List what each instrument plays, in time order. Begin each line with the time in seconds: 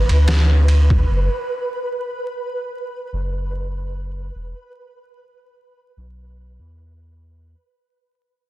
Already playing: synth texture B4
0.09 sub bass D2, ride
0.28 snare, ride
0.68 ride
0.90 kick
1.10 sub bass F#1
3.13 sub bass F#1
4.35 sub bass E1
5.97 sub bass B1
6.59 sub bass E2